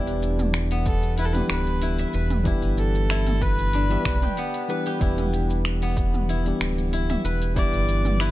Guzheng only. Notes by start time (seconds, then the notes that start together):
Already playing: D4 E4 G4 B4 E5
0.71 B3
1.18 E4
1.82 E4
1.99 E5
2.14 B4
2.46 E4
3.10 E4
3.42 B4
3.74 D4
3.91 E5
4.23 G4
4.38 B3
4.70 B4
4.86 G4
5.01 E4
5.82 B3
6.29 E4
6.93 E4
7.10 E5
7.25 B4
7.57 E4
8.20 E4